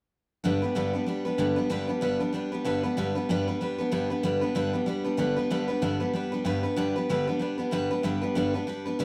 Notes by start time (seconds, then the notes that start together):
0.44 G2 D3 G3 B3 D4 B4
0.62 G3 B3 D4 B4
0.75 G2 D3 G3 B3 D4 B4
0.93 G3 B3 D4 B4
1.06 G3 B3 D4 B4
1.25 G3 B3 D4 B4
1.38 G2 D3 G3 B3 D4 B4
1.56 G3 B3 D4 B4
1.69 G2 D3 G3 B3 D4 B4
1.87 G3 B3 D4 B4
2.01 G2 D3 G3 B3 D4 B4
2.19 G3 B3 D4 B4
2.33 G3 B3 D4 B4
2.52 G3 B3 D4 B4
2.64 G2 D3 G3 B3 D4 B4
2.83 G3 B3 D4 B4
2.97 G2 D3 G3 B3 D4 B4
3.15 G3 B3 D4 B4
3.29 G2 D3 G3 B3 D4 B4
3.48 G3 B3 D4 B4
3.61 G3 B3 D4 B4
3.78 G3 B3 D4 B4
3.91 G2 D3 G3 B3 D4 B4
4.10 G3 B3 D4 B4
4.23 G2 D3 G3 B3 D4 B4
4.41 G3 B3 D4 B4
4.55 G2 D3 G3 B3 D4 B4
4.73 G3 B3 D4 B4
4.86 G3 B3 D4 B4
5.04 G3 B3 D4 B4
5.17 G2 D3 G3 B3 D4 B4
5.36 G3 B3 D4 B4
5.50 G2 D3 G3 B3 D4 B4
5.68 G3 B3 D4 B4
5.82 G2 D3 G3 B3 D4 B4
6.00 G3 B3 D4 B4
6.13 G3 B3 D4 B4
6.32 G3 B3 D4 B4
6.45 G2 D3 G3 B3 D4 B4
6.63 G3 B3 D4 B4
6.76 G2 D3 G3 B3 D4 B4
6.96 G3 B3 D4 B4
7.09 G2 D3 G3 B3 D4 B4
7.27 G3 B3 D4 B4
7.39 G3 B3 D4 B4
7.58 G3 B3 D4 B4
7.71 G2 D3 G3 B3 D4 B4
7.91 G3 B3 D4 B4
8.03 G2 D3 G3 B3 D4 B4
8.21 G3 B3 D4 B4
8.35 G2 D3 G3 B3 D4 B4
8.54 G3 B3 D4 B4
8.67 G3 B3 D4 B4
8.85 G3 B3 D4 B4
8.99 G2 D3 G3 B3 D4 B4